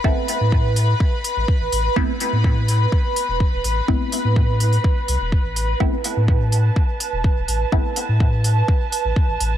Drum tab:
HH |--o---o---o---o-|--o---o---o---o-|--o---oo--o---o-|--o---o---o---o-|
BD |o---o---o---o---|o---o---o---o---|o---o---o---o---|o---o---o---o---|

HH |--o---o---o---o-|
BD |o---o---o---o---|